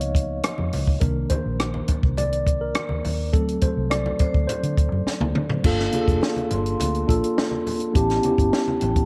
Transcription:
0.00 0.40 C#2 medium
0.00 1.03 F3 soft
0.00 1.01 A#3 soft
0.00 1.03 B3 soft
0.00 1.04 D#4 medium
0.00 1.03 C#5 medium
0.00 1.03 D#5 medium
0.00 1.04 F5 medium
0.00 closed hi-hat medium
0.15 kick medium
0.15 closed hi-hat medium
0.15 muted conga soft
0.43 cross-stick loud
0.43 closed hi-hat medium
0.43 muted conga soft
0.58 0.70 F2 medium
0.58 high conga medium
0.73 0.95 C#2 medium
0.73 open hi-hat medium
0.73 muted conga soft
0.73 low conga medium
0.87 kick medium
1.00 1.24 C2 medium
1.00 1.84 D#3 medium
1.00 1.84 A#3 medium
1.00 1.84 D4 medium
1.00 1.31 A#4 medium
1.00 kick loud
1.00 closed hi-hat medium
1.00 muted conga soft
1.29 2.19 C5 medium
1.29 kick medium
1.29 closed hi-hat medium
1.29 muted conga soft
1.29 high conga medium
1.46 1.79 A#1 medium
1.60 cross-stick loud
1.60 closed hi-hat medium
1.74 high conga medium
1.88 muted fingered electric bass stroke soft
1.88 kick medium
1.88 closed hi-hat medium
1.88 muted conga soft
1.88 low conga medium
2.03 2.72 C2 medium
2.03 kick medium
2.17 2.58 D5 loud
2.17 closed hi-hat medium
2.17 muted conga soft
2.17 low conga medium
2.33 closed hi-hat medium
2.47 kick medium
2.47 closed hi-hat medium
2.61 3.01 A#4 medium
2.75 cross-stick loud
2.75 closed hi-hat medium
2.75 muted conga soft
2.89 3.01 D#2 medium
2.89 high conga medium
3.05 3.33 D#2 medium
3.05 open hi-hat medium
3.05 muted conga soft
3.05 low conga medium
3.33 3.56 D2 loud
3.33 3.71 F#3 medium
3.33 3.71 A3 medium
3.33 3.72 C4 medium
3.33 3.63 A4 medium
3.33 kick loud
3.33 closed hi-hat medium
3.48 closed hi-hat soft
3.61 3.92 C5 medium
3.61 kick medium
3.61 closed hi-hat medium
3.61 high conga medium
3.77 4.11 C2 medium
3.90 4.50 D5 medium
3.90 cross-stick medium
3.90 closed hi-hat medium
3.90 muted conga soft
4.06 high conga medium
4.19 5.59 C5 medium
4.19 muted fingered electric bass stroke soft
4.19 kick medium
4.19 closed hi-hat medium
4.19 low conga medium
4.34 4.46 D2 medium
4.34 kick medium
4.47 5.31 C5 medium
4.47 closed hi-hat medium
4.47 muted conga soft
4.47 low conga medium
4.63 4.74 D3 medium
4.63 closed hi-hat medium
4.77 4.89 D2 medium
4.77 kick medium
4.77 closed hi-hat medium
4.92 5.03 F#2 medium
4.92 high conga soft
5.06 muted fingered electric bass stroke soft
5.06 snare soft
5.20 5.32 D2 medium
5.20 high tom medium
5.20 high conga medium
5.35 5.58 D3 medium
5.35 mid tom medium
5.35 low conga medium
5.50 floor tom medium
5.63 5.87 G1 medium
5.63 5.89 A#3 medium
5.63 5.90 D4 medium
5.63 5.90 F4 medium
5.63 5.91 A4 medium
5.63 7.04 F5 medium
5.63 kick medium
5.63 crash medium
5.63 muted conga soft
5.80 snare soft
5.92 6.95 A#3 medium
5.92 6.95 D4 medium
5.92 6.96 F4 medium
5.92 6.00 G#4 medium
5.92 closed hi-hat medium
5.92 high conga medium
6.01 6.99 A4 medium
6.08 6.19 F1 medium
6.08 kick medium
6.08 closed hi-hat soft
6.21 snare medium
6.21 muted conga soft
6.36 closed hi-hat soft
6.36 high conga medium
6.51 6.74 G1 medium
6.51 7.91 C6 soft
6.51 closed hi-hat medium
6.51 low conga medium
6.66 closed hi-hat soft
6.80 7.03 D2 medium
6.80 closed hi-hat medium
6.80 muted conga soft
6.80 low conga medium
6.95 closed hi-hat soft
7.07 7.20 A#1 medium
7.07 7.84 A#3 medium
7.07 7.85 D4 medium
7.07 7.85 F4 medium
7.07 7.86 A4 medium
7.07 kick medium
7.07 closed hi-hat medium
7.07 muted conga soft
7.24 closed hi-hat medium
7.38 snare loud
7.38 muted conga soft
7.51 high conga medium
7.67 open hi-hat medium
7.67 muted conga soft
7.67 low conga medium
7.80 closed hi-hat soft
7.93 8.18 A1 medium
7.93 8.20 B3 medium
7.93 8.20 C#4 medium
7.93 8.21 E4 medium
7.93 8.21 G4 loud
7.93 9.05 A5 medium
7.93 kick loud
7.93 closed hi-hat medium
7.93 muted conga soft
8.10 snare soft
8.10 closed hi-hat soft
8.22 9.05 B3 medium
8.22 9.05 C#4 medium
8.22 9.05 E4 medium
8.22 9.05 G4 medium
8.22 closed hi-hat medium
8.22 high conga medium
8.38 8.49 G1 medium
8.38 kick medium
8.38 closed hi-hat soft
8.53 snare medium
8.68 high conga medium
8.80 9.04 A1 medium
8.80 9.05 G5 soft
8.80 closed hi-hat medium
8.80 low conga medium
8.96 kick medium
8.96 closed hi-hat soft

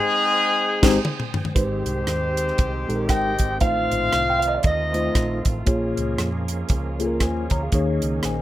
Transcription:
0.00 1.33 G#3 loud
0.00 1.31 C4 medium
0.00 1.30 D#4 medium
0.00 1.33 G#4 loud
0.00 1.54 C5 medium
0.00 1.54 G5 medium
0.00 1.54 G#5 medium
0.00 1.52 D#6 medium
0.82 0.97 G#1 loud
0.82 0.97 G#3 loud
0.82 0.97 C4 loud
0.82 0.98 D#4 loud
0.82 0.98 G4 loud
0.82 0.98 C5 loud
0.82 kick loud
0.82 snare loud
0.82 crash medium
1.05 mid tom medium
1.20 mid tom medium
1.34 floor tom loud
1.45 floor tom medium
1.54 1.81 G#1 medium
1.54 2.33 G#2 medium
1.54 5.63 D#3 medium
1.54 2.17 G#3 medium
1.54 3.59 G#3 medium
1.54 5.63 C4 medium
1.54 3.06 C4 medium
1.54 5.63 C4 medium
1.54 2.17 D#4 medium
1.54 5.63 D#4 medium
1.54 3.06 D#4 medium
1.54 3.59 G4 medium
1.54 2.17 G4 medium
1.54 3.59 G4 medium
1.54 3.06 G4 medium
1.54 1.63 B4 medium
1.54 3.14 C5 medium
1.54 3.06 C5 medium
1.54 kick medium
1.54 closed hi-hat medium
1.62 2.20 C5 medium
1.85 2.04 C2 medium
1.85 closed hi-hat medium
2.07 2.50 D#2 medium
2.07 cross-stick medium
2.07 closed hi-hat medium
2.37 cross-stick soft
2.37 closed hi-hat medium
2.48 cross-stick soft
2.58 2.84 C2 medium
2.58 kick loud
2.58 closed hi-hat medium
2.88 3.07 A#1 medium
2.88 3.32 G#3 medium
2.88 3.33 D#4 medium
2.88 3.33 G4 medium
2.88 2.94 A4 medium
2.88 closed hi-hat medium
2.96 3.36 A#4 medium
3.08 3.35 G#1 medium
3.08 3.61 G4 medium
3.08 3.57 C5 medium
3.08 3.57 D#5 medium
3.08 3.61 G5 loud
3.08 3.63 G5 medium
3.08 kick medium
3.08 cross-stick medium
3.08 closed hi-hat medium
3.39 3.58 G#1 medium
3.39 kick medium
3.39 closed hi-hat medium
3.60 3.87 A1 medium
3.60 4.38 A2 medium
3.60 4.22 A3 medium
3.60 5.65 A3 medium
3.60 5.66 A3 medium
3.60 4.23 D#4 medium
3.60 4.22 F4 medium
3.60 4.60 F4 medium
3.60 5.65 F4 medium
3.60 7.70 F4 medium
3.60 4.60 C5 medium
3.60 4.23 C5 medium
3.60 4.31 F5 medium
3.60 4.60 F5 loud
3.60 kick medium
3.60 closed hi-hat medium
3.91 4.10 A#1 medium
3.91 closed hi-hat medium
4.13 4.57 C2 medium
4.13 cross-stick loud
4.13 closed hi-hat medium
4.30 4.40 G5 medium
4.39 4.48 F5 medium
4.39 closed hi-hat medium
4.47 4.56 D#5 medium
4.54 4.63 D5 medium
4.54 4.63 F5 medium
4.63 5.08 D#2 medium
4.63 5.46 D#4 medium
4.63 5.64 C5 medium
4.63 5.41 D#5 medium
4.63 5.46 D#5 medium
4.63 kick loud
4.63 closed hi-hat medium
4.93 5.38 A3 medium
4.93 5.38 D#4 medium
4.93 5.38 F4 medium
4.93 5.39 C5 medium
4.93 closed hi-hat medium
5.15 5.41 A#1 medium
5.15 kick medium
5.15 cross-stick medium
5.15 closed hi-hat medium
5.45 5.64 A1 medium
5.45 kick medium
5.45 closed hi-hat medium
5.66 5.92 A#1 medium
5.66 6.44 A#2 medium
5.66 7.70 F3 medium
5.66 8.42 G#3 medium
5.66 6.28 A#3 medium
5.66 8.42 A#3 medium
5.66 7.70 C#4 medium
5.66 8.42 C#4 medium
5.66 6.28 F4 medium
5.66 7.70 G#4 medium
5.66 6.29 G#4 medium
5.66 6.29 C#5 medium
5.66 kick medium
5.66 closed hi-hat medium
5.97 6.16 C#2 medium
5.97 closed hi-hat medium
6.18 6.62 F2 medium
6.18 cross-stick loud
6.18 closed hi-hat medium
6.48 closed hi-hat medium
6.69 7.21 C#2 medium
6.69 kick loud
6.69 closed hi-hat medium
6.99 7.43 A#3 medium
6.99 7.44 F4 medium
6.99 7.21 G#4 medium
6.99 7.05 A4 medium
6.99 closed hi-hat medium
7.07 7.25 A#4 medium
7.20 7.46 D#2 medium
7.20 7.50 C5 soft
7.20 7.50 G#5 medium
7.20 kick medium
7.20 cross-stick medium
7.20 closed hi-hat medium
7.50 7.70 D2 medium
7.50 7.62 C#5 medium
7.50 7.61 A#5 medium
7.50 kick medium
7.50 closed hi-hat medium
7.63 7.73 G#4 soft
7.63 7.87 F5 medium
7.72 7.98 D#2 medium
7.72 8.42 D#3 medium
7.72 8.34 A#3 medium
7.72 8.42 C#4 medium
7.72 8.42 D#4 medium
7.72 8.34 D#4 medium
7.72 8.42 G#4 medium
7.72 8.35 G#4 medium
7.72 8.25 C#5 medium
7.72 kick medium
7.72 closed hi-hat medium
8.02 8.21 C#2 medium
8.02 closed hi-hat medium
8.23 8.42 A#1 medium
8.23 8.42 C5 soft
8.23 8.42 G#5 medium
8.23 cross-stick loud
8.23 closed hi-hat medium

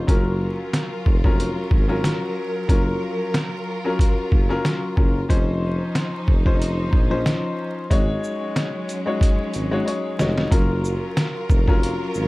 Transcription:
0.07 0.58 F#1 loud
0.07 1.14 F#3 medium
0.07 5.26 F#3 medium
0.07 1.14 C#4 medium
0.07 1.14 F4 medium
0.07 2.67 F4 medium
0.07 1.14 A#4 loud
0.07 5.26 A#4 medium
0.07 kick loud
0.07 closed hi-hat medium
0.73 snare loud
0.73 closed hi-hat medium
1.06 1.56 F1 loud
1.06 kick medium
1.24 1.84 F#3 medium
1.24 1.84 C#4 medium
1.24 1.84 F4 medium
1.24 1.84 A#4 loud
1.24 kick medium
1.40 closed hi-hat medium
1.71 2.10 G#1 medium
1.71 kick loud
1.88 2.63 F#3 loud
1.88 2.63 C#4 medium
1.88 2.63 F4 medium
1.88 2.63 A#4 loud
2.04 snare loud
2.04 closed hi-hat medium
2.68 2.94 F#1 loud
2.68 3.74 F#3 medium
2.68 3.75 C#4 medium
2.68 5.27 F4 medium
2.68 3.75 F4 medium
2.68 3.75 A#4 loud
2.68 kick loud
2.68 closed hi-hat medium
3.34 snare loud
3.34 closed hi-hat medium
3.84 4.44 F#3 medium
3.84 4.44 C#4 medium
3.84 4.45 F4 medium
3.84 4.45 A#4 medium
3.99 kick loud
3.99 closed hi-hat medium
4.32 4.57 F#1 loud
4.32 kick loud
4.49 4.63 F#3 medium
4.49 4.63 C#4 medium
4.49 4.64 F4 medium
4.49 4.64 A#4 loud
4.64 4.94 F#3 medium
4.64 4.95 C#4 medium
4.64 4.95 F4 medium
4.64 4.95 A#4 medium
4.64 snare loud
4.64 closed hi-hat medium
4.96 5.22 F#1 loud
4.96 5.27 F#3 medium
4.96 5.27 C#4 medium
4.96 5.27 F4 medium
4.96 5.28 A#4 medium
4.96 kick loud
5.29 5.80 F1 loud
5.29 6.35 F3 medium
5.29 7.89 F3 medium
5.29 6.35 C#4 medium
5.29 6.36 D#4 medium
5.29 7.89 D#4 medium
5.29 6.36 C5 loud
5.29 7.89 C5 medium
5.29 kick loud
5.29 closed hi-hat medium
5.95 snare loud
5.95 closed hi-hat medium
6.28 6.95 F1 loud
6.28 kick medium
6.45 7.05 F3 medium
6.45 7.05 C#4 medium
6.45 7.05 D#4 medium
6.45 7.06 C5 loud
6.45 kick medium
6.62 closed hi-hat medium
6.93 7.32 A#1 medium
6.93 kick loud
7.10 7.84 F3 medium
7.10 7.84 C#4 medium
7.10 7.85 D#4 medium
7.10 7.85 C5 loud
7.26 snare loud
7.26 closed hi-hat medium
7.90 8.16 G#1 loud
7.90 10.49 F#3 medium
7.90 8.96 G#3 medium
7.90 10.49 G#3 medium
7.90 10.49 C#4 medium
7.90 8.97 D#4 loud
7.90 8.97 F#4 medium
7.90 8.97 C#5 loud
7.90 kick loud
7.90 closed hi-hat medium
8.24 shaker medium
8.56 snare loud
8.56 closed hi-hat medium
8.89 closed hi-hat medium
8.89 shaker medium
9.06 9.66 G#3 medium
9.06 9.66 D#4 medium
9.06 9.66 F#4 medium
9.06 9.66 C#5 medium
9.21 kick loud
9.21 closed hi-hat medium
9.54 9.79 G#1 medium
9.54 closed hi-hat medium
9.54 shaker medium
9.71 9.84 G#3 loud
9.71 9.85 D#4 medium
9.71 9.85 F#4 medium
9.71 9.85 C#5 medium
9.86 10.16 G#3 medium
9.86 10.17 D#4 medium
9.86 10.17 F#4 medium
9.86 10.17 C#5 medium
9.86 closed hi-hat medium
10.19 10.44 F1 loud
10.19 10.49 G#3 medium
10.19 10.50 D#4 medium
10.19 10.50 F#4 medium
10.19 10.50 C#5 medium
10.19 snare loud
10.19 shaker medium
10.38 snare medium
10.51 11.01 F#1 loud
10.51 11.57 F#3 loud
10.51 12.28 F#3 medium
10.51 11.57 C#4 medium
10.51 11.57 F4 medium
10.51 12.28 F4 medium
10.51 12.28 A#4 loud
10.51 11.58 A#4 loud
10.51 kick loud
10.51 closed hi-hat medium
10.85 shaker medium
11.17 snare loud
11.17 closed hi-hat medium
11.50 11.99 F1 loud
11.50 kick loud
11.50 shaker medium
11.68 12.27 F#3 medium
11.68 12.27 C#4 medium
11.68 12.28 F4 medium
11.68 12.28 A#4 loud
11.68 kick medium
11.83 closed hi-hat medium
12.14 12.28 G#1 loud
12.14 shaker medium

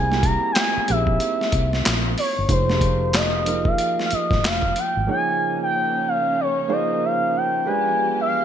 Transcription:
0.00 0.36 C2 loud
0.00 0.10 E4 medium
0.00 0.10 G#4 medium
0.00 0.26 G#5 loud
0.11 0.83 A#3 medium
0.11 0.84 C4 medium
0.11 0.84 E4 medium
0.11 0.17 G4 medium
0.11 snare soft
0.19 0.87 G#4 medium
0.23 0.51 A#5 loud
0.23 kick medium
0.23 closed hi-hat medium
0.52 0.60 G5 medium
0.52 closed hi-hat medium
0.56 0.92 G#5 loud
0.56 snare loud
0.56 clap medium
0.77 muted fingered electric bass stroke soft
0.88 1.17 A#1 medium
0.88 2.09 A#3 medium
0.88 2.10 C4 medium
0.88 0.97 D#4 medium
0.88 2.09 G4 medium
0.88 2.10 G#4 medium
0.88 1.86 E5 medium
0.88 closed hi-hat medium
0.96 2.13 E4 medium
1.07 kick medium
1.20 closed hi-hat medium
1.41 snare soft
1.52 1.81 C2 medium
1.52 kick medium
1.52 closed hi-hat medium
1.73 snare soft
1.85 2.14 A#1 medium
1.85 snare loud
1.85 clap loud
1.85 closed hi-hat medium
2.18 2.52 C#5 medium
2.18 open hi-hat soft
2.39 2.49 G1 medium
2.49 3.75 F1 loud
2.49 2.67 F3 medium
2.49 2.67 A#3 medium
2.49 2.68 D#4 medium
2.49 2.68 G#4 medium
2.49 2.68 C5 medium
2.49 3.16 C5 medium
2.49 kick loud
2.49 closed hi-hat medium
2.69 3.41 F3 medium
2.69 3.42 A#3 medium
2.69 3.42 D#4 medium
2.69 2.75 G4 soft
2.69 3.42 C5 medium
2.69 snare soft
2.77 3.45 G#4 medium
2.81 kick medium
2.81 closed hi-hat medium
3.13 3.69 D#5 loud
3.13 snare loud
3.13 clap medium
3.13 closed hi-hat medium
3.46 4.67 F3 medium
3.46 4.68 A#3 medium
3.46 4.68 D#4 medium
3.46 3.54 G4 medium
3.46 4.68 A#4 medium
3.46 closed hi-hat medium
3.53 4.71 G#4 medium
3.65 4.05 F5 loud
3.65 kick medium
3.78 closed hi-hat medium
3.99 snare soft
4.06 4.15 F5 medium
4.11 4.48 D#5 medium
4.11 muted fingered electric bass stroke soft
4.11 closed hi-hat medium
4.31 4.45 G#1 medium
4.31 kick medium
4.31 snare soft
4.44 4.72 F1 medium
4.44 4.80 F5 medium
4.44 snare loud
4.44 clap loud
4.44 closed hi-hat medium
4.62 kick medium
4.76 5.09 G5 loud
4.76 closed hi-hat medium
4.97 5.07 G#1 medium
5.07 7.63 C#3 medium
5.07 6.29 F3 medium
5.07 6.29 A#3 medium
5.07 7.63 A#3 medium
5.07 7.63 C#4 medium
5.07 6.29 D#4 medium
5.07 6.29 G#4 medium
5.07 6.29 C#5 medium
5.11 5.58 G#5 medium
5.63 6.10 G5 medium
6.08 6.42 F5 medium
6.40 6.74 C#5 medium
6.68 7.59 F3 medium
6.68 7.60 A#3 medium
6.68 7.60 D#4 medium
6.68 7.60 G#4 medium
6.68 7.60 C5 medium
6.72 7.06 D#5 medium
7.05 7.38 F5 loud
7.37 7.70 G5 loud
7.65 8.45 F3 medium
7.65 8.45 G#3 medium
7.65 8.45 B3 medium
7.65 8.45 D4 medium
7.65 8.45 F4 medium
7.65 8.45 G4 medium
7.65 8.45 B4 medium
7.65 8.19 G#5 loud
8.21 8.45 F5 loud

